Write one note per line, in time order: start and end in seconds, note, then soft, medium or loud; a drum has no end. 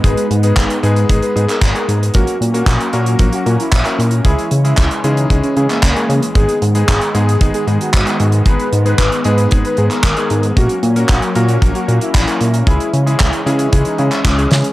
0.00 0.15 G#1 medium
0.00 2.11 G#3 medium
0.00 2.11 B3 medium
0.00 2.11 D#4 medium
0.00 0.38 B4 loud
0.00 kick loud
0.04 0.25 G#3 medium
0.04 0.25 B3 medium
0.04 0.25 D#4 medium
0.04 0.25 G#4 loud
0.04 closed hi-hat medium
0.17 closed hi-hat medium
0.31 0.52 G#2 medium
0.31 closed hi-hat medium
0.43 0.76 G#3 medium
0.43 0.76 B3 medium
0.43 0.76 D#4 medium
0.43 0.76 G#4 medium
0.43 0.78 B4 medium
0.43 closed hi-hat medium
0.57 0.68 G#1 medium
0.57 kick loud
0.57 clap loud
0.57 closed hi-hat medium
0.70 closed hi-hat medium
0.83 1.05 G#2 loud
0.83 1.06 G#3 medium
0.83 1.06 B3 medium
0.83 1.06 D#4 medium
0.83 1.06 G#4 loud
0.83 1.17 B4 medium
0.83 closed hi-hat medium
0.96 closed hi-hat soft
1.09 1.20 G#1 medium
1.09 1.32 G#3 medium
1.09 1.32 B3 medium
1.09 1.32 D#4 medium
1.09 1.32 G#4 loud
1.09 kick loud
1.09 closed hi-hat medium
1.22 1.45 B4 medium
1.22 closed hi-hat medium
1.36 1.47 G#2 medium
1.36 1.56 G#3 medium
1.36 1.56 B3 medium
1.36 1.56 D#4 medium
1.36 1.56 G#4 medium
1.36 closed hi-hat medium
1.49 2.04 A#4 loud
1.49 clap soft
1.49 closed hi-hat medium
1.61 1.73 G#1 medium
1.61 kick loud
1.61 clap loud
1.61 closed hi-hat loud
1.75 2.11 G#3 medium
1.75 2.11 B3 medium
1.75 2.11 D#4 medium
1.75 2.11 G#4 medium
1.75 closed hi-hat medium
1.88 2.10 G#2 medium
1.88 closed hi-hat medium
2.03 closed hi-hat medium
2.14 2.26 A#1 medium
2.14 4.23 F#3 medium
2.14 4.23 A#3 medium
2.14 2.35 A#3 medium
2.14 6.32 C#4 medium
2.14 2.35 C#4 medium
2.14 2.49 F#4 loud
2.14 2.35 F#4 medium
2.14 2.35 A#4 loud
2.14 kick loud
2.14 closed hi-hat medium
2.27 closed hi-hat medium
2.41 2.63 A#2 medium
2.41 closed hi-hat medium
2.54 2.87 A#3 medium
2.54 2.87 C#4 medium
2.54 2.87 F#4 medium
2.54 2.88 F#4 medium
2.54 2.87 A#4 medium
2.54 closed hi-hat soft
2.66 2.78 A#1 medium
2.66 kick loud
2.66 clap loud
2.66 closed hi-hat medium
2.81 closed hi-hat medium
2.93 3.15 A#2 medium
2.93 3.17 A#3 loud
2.93 3.17 C#4 medium
2.93 3.28 F#4 medium
2.93 3.17 F#4 medium
2.93 3.17 A#4 loud
2.93 closed hi-hat medium
3.06 closed hi-hat medium
3.19 3.31 A#1 medium
3.19 3.42 A#3 medium
3.19 3.42 C#4 medium
3.19 3.42 F#4 medium
3.19 3.42 A#4 loud
3.19 kick loud
3.19 closed hi-hat medium
3.33 3.56 F#4 medium
3.33 closed hi-hat medium
3.46 3.57 A#2 loud
3.46 3.67 A#3 medium
3.46 3.67 C#4 medium
3.46 3.67 F#4 medium
3.46 3.67 A#4 medium
3.46 closed hi-hat soft
3.59 4.15 E4 medium
3.59 closed hi-hat medium
3.72 3.83 A#1 medium
3.72 kick loud
3.72 clap loud
3.72 closed hi-hat loud
3.85 4.22 A#3 medium
3.85 4.22 C#4 medium
3.85 4.22 F#4 medium
3.85 4.22 A#4 medium
3.85 clap soft
3.85 closed hi-hat medium
3.99 4.21 A#2 medium
3.99 closed hi-hat medium
4.11 closed hi-hat medium
4.25 4.36 C#2 medium
4.25 6.33 E3 medium
4.25 10.53 G#3 medium
4.25 4.46 G#3 medium
4.25 4.46 C#4 medium
4.25 4.59 E4 loud
4.25 4.46 E4 medium
4.25 4.46 G#4 loud
4.25 kick loud
4.25 closed hi-hat medium
4.39 closed hi-hat soft
4.51 4.73 C#3 medium
4.51 closed hi-hat medium
4.64 4.97 G#3 medium
4.64 4.97 C#4 medium
4.64 4.99 E4 medium
4.64 4.97 E4 medium
4.64 4.97 G#4 medium
4.64 closed hi-hat soft
4.77 4.89 C#2 medium
4.77 kick loud
4.77 clap loud
4.77 closed hi-hat medium
4.91 closed hi-hat medium
5.04 5.26 C#3 medium
5.04 5.27 G#3 loud
5.04 5.27 C#4 medium
5.04 5.38 D#4 medium
5.04 5.27 E4 medium
5.04 5.27 G#4 loud
5.04 closed hi-hat medium
5.17 closed hi-hat medium
5.30 5.41 C#2 loud
5.30 5.53 G#3 medium
5.30 5.53 C#4 medium
5.30 5.53 E4 medium
5.30 5.53 G#4 loud
5.30 kick loud
5.30 closed hi-hat loud
5.43 5.66 C#4 medium
5.43 closed hi-hat soft
5.57 5.68 C#3 medium
5.57 5.77 G#3 medium
5.57 5.77 C#4 medium
5.57 5.77 E4 medium
5.57 5.77 G#4 medium
5.57 closed hi-hat medium
5.69 6.25 A#3 medium
5.69 clap soft
5.69 closed hi-hat soft
5.83 5.94 C#2 medium
5.83 kick loud
5.83 clap loud
5.83 closed hi-hat medium
5.96 6.33 G#3 medium
5.96 6.33 C#4 medium
5.96 6.33 E4 medium
5.96 6.32 G#4 medium
5.96 closed hi-hat soft
6.09 6.20 C#3 loud
6.09 closed hi-hat medium
6.23 closed hi-hat medium
6.35 6.46 G#1 medium
6.35 10.52 D#3 medium
6.35 6.56 G#3 medium
6.35 10.52 B3 medium
6.35 6.56 B3 medium
6.35 6.56 D#4 medium
6.35 6.56 G#4 loud
6.35 6.70 G#4 loud
6.35 kick loud
6.35 closed hi-hat medium
6.49 closed hi-hat soft
6.62 6.84 G#2 medium
6.62 closed hi-hat medium
6.75 7.08 G#3 medium
6.75 7.08 B3 medium
6.75 7.08 D#4 medium
6.75 7.09 G#4 medium
6.75 7.08 G#4 medium
6.75 closed hi-hat medium
6.88 6.99 G#1 medium
6.88 kick loud
6.88 clap loud
6.88 closed hi-hat medium
7.01 closed hi-hat medium
7.14 7.37 G#2 medium
7.14 7.38 G#3 medium
7.14 7.38 B3 medium
7.14 7.38 D#4 medium
7.14 7.49 G#4 medium
7.14 7.38 G#4 loud
7.14 closed hi-hat medium
7.29 closed hi-hat medium
7.41 7.52 G#1 loud
7.41 7.63 G#3 medium
7.41 7.63 B3 medium
7.41 7.63 D#4 medium
7.41 7.63 G#4 loud
7.41 kick loud
7.41 closed hi-hat medium
7.54 7.77 G#4 medium
7.54 closed hi-hat medium
7.67 7.78 G#2 loud
7.67 7.88 G#3 medium
7.67 7.88 B3 medium
7.67 7.88 D#4 medium
7.67 7.88 G#4 medium
7.67 closed hi-hat medium
7.81 8.36 F#4 loud
7.81 closed hi-hat soft
7.93 8.05 G#1 medium
7.93 kick loud
7.93 clap loud
7.93 closed hi-hat loud
8.07 8.43 G#3 medium
8.07 8.43 B3 medium
8.07 8.43 D#4 medium
8.07 8.43 G#4 medium
8.07 clap soft
8.07 closed hi-hat medium
8.20 8.42 G#2 medium
8.20 closed hi-hat medium
8.32 closed hi-hat soft
8.46 8.57 G#1 medium
8.46 8.67 G#3 medium
8.46 8.67 B3 medium
8.46 8.67 D#4 medium
8.46 8.67 G#4 loud
8.46 8.80 B4 loud
8.46 kick loud
8.46 closed hi-hat medium
8.60 closed hi-hat soft
8.73 8.94 G#2 medium
8.73 closed hi-hat medium
8.85 9.18 G#3 medium
8.85 9.18 B3 medium
8.85 9.18 D#4 medium
8.85 9.18 G#4 medium
8.85 9.20 B4 medium
8.85 closed hi-hat soft
8.98 9.10 G#1 medium
8.98 kick loud
8.98 clap loud
8.98 closed hi-hat medium
9.12 closed hi-hat medium
9.24 9.47 G#2 medium
9.24 9.48 G#3 loud
9.24 9.48 B3 medium
9.24 9.48 D#4 medium
9.24 9.48 G#4 loud
9.24 9.59 B4 medium
9.24 closed hi-hat medium
9.38 closed hi-hat medium
9.51 9.63 G#1 loud
9.51 9.74 G#3 medium
9.51 9.74 B3 medium
9.51 9.74 D#4 medium
9.51 9.74 G#4 loud
9.51 kick loud
9.51 closed hi-hat medium
9.65 9.88 B4 medium
9.65 closed hi-hat medium
9.77 9.89 G#2 medium
9.77 9.98 G#3 medium
9.77 9.98 B3 medium
9.77 9.98 D#4 medium
9.77 9.98 G#4 medium
9.77 closed hi-hat soft
9.91 10.46 A#4 medium
9.91 clap soft
9.91 closed hi-hat medium
10.03 10.15 G#1 medium
10.03 kick loud
10.03 clap loud
10.03 closed hi-hat medium
10.17 10.54 G#3 medium
10.17 10.54 B3 medium
10.17 10.54 D#4 medium
10.17 10.54 G#4 medium
10.17 closed hi-hat medium
10.30 10.52 G#2 medium
10.30 closed hi-hat medium
10.43 closed hi-hat medium
10.56 10.68 A#1 medium
10.56 12.65 F#3 medium
10.56 10.77 A#3 medium
10.56 12.65 A#3 medium
10.56 10.77 C#4 medium
10.56 12.65 C#4 medium
10.56 10.77 F#4 medium
10.56 10.91 F#4 medium
10.56 10.77 A#4 medium
10.56 kick loud
10.56 closed hi-hat loud
10.69 closed hi-hat medium
10.83 11.05 A#2 medium
10.83 closed hi-hat medium
10.96 11.29 A#3 medium
10.96 11.29 C#4 medium
10.96 11.29 F#4 medium
10.96 11.30 F#4 medium
10.96 11.29 A#4 medium
10.96 closed hi-hat medium
11.09 11.20 A#1 medium
11.09 kick loud
11.09 clap medium
11.09 closed hi-hat loud
11.22 closed hi-hat medium
11.35 11.58 A#2 medium
11.35 11.59 A#3 loud
11.35 11.59 C#4 medium
11.35 11.59 F#4 medium
11.35 11.70 F#4 loud
11.35 11.59 A#4 loud
11.35 closed hi-hat medium
11.48 closed hi-hat medium
11.62 11.73 A#1 medium
11.62 11.84 A#3 medium
11.62 11.84 C#4 medium
11.62 11.84 F#4 medium
11.62 11.84 A#4 loud
11.62 kick loud
11.62 closed hi-hat loud
11.75 11.98 F#4 medium
11.75 closed hi-hat medium
11.88 11.99 A#2 medium
11.88 12.09 A#3 medium
11.88 12.09 C#4 medium
11.88 12.09 F#4 medium
11.88 12.09 A#4 medium
11.88 closed hi-hat soft
12.01 12.57 E4 loud
12.01 closed hi-hat medium
12.15 12.26 A#1 medium
12.15 kick loud
12.15 clap loud
12.15 closed hi-hat loud
12.27 12.64 A#3 medium
12.27 12.64 C#4 medium
12.27 12.64 F#4 medium
12.27 12.64 A#4 medium
12.27 clap soft
12.27 closed hi-hat medium
12.41 12.63 A#2 medium
12.41 closed hi-hat medium
12.54 closed hi-hat medium
12.67 12.78 C#2 medium
12.67 14.73 E3 medium
12.67 14.73 G#3 medium
12.67 12.88 G#3 medium
12.67 14.73 C#4 medium
12.67 12.88 C#4 medium
12.67 12.88 E4 medium
12.67 13.01 E4 loud
12.67 12.88 G#4 loud
12.67 kick loud
12.67 closed hi-hat medium
12.80 closed hi-hat medium
12.93 13.15 C#3 medium
12.93 closed hi-hat medium
13.06 13.39 G#3 medium
13.06 13.39 C#4 medium
13.06 13.39 E4 medium
13.06 13.41 E4 medium
13.06 13.39 G#4 medium
13.06 closed hi-hat medium
13.20 13.31 C#2 medium
13.20 kick loud
13.20 clap loud
13.20 closed hi-hat loud
13.33 closed hi-hat medium
13.46 13.68 C#3 medium
13.46 13.69 G#3 medium
13.46 13.69 C#4 medium
13.46 13.69 E4 medium
13.46 13.81 E4 medium
13.46 13.69 G#4 loud
13.46 closed hi-hat medium
13.59 closed hi-hat medium
13.72 13.84 C#2 loud
13.72 13.95 G#3 medium
13.72 13.95 C#4 medium
13.72 13.95 E4 medium
13.72 13.95 G#4 loud
13.72 kick loud
13.72 closed hi-hat loud
13.85 14.09 D#4 medium
13.85 closed hi-hat medium
13.98 14.10 C#3 loud
13.98 14.19 G#3 medium
13.98 14.19 C#4 medium
13.98 14.19 E4 medium
13.98 14.19 G#4 medium
13.98 closed hi-hat soft
14.11 14.67 C#4 loud
14.11 clap soft
14.11 closed hi-hat medium
14.25 14.47 C#2 medium
14.25 kick loud
14.25 clap loud
14.25 closed hi-hat medium
14.38 14.73 G#3 medium
14.38 14.73 C#4 medium
14.38 14.73 E4 medium
14.38 14.73 G#4 medium
14.38 closed hi-hat medium
14.51 14.62 C#3 medium
14.51 snare medium
14.51 closed hi-hat medium
14.64 closed hi-hat medium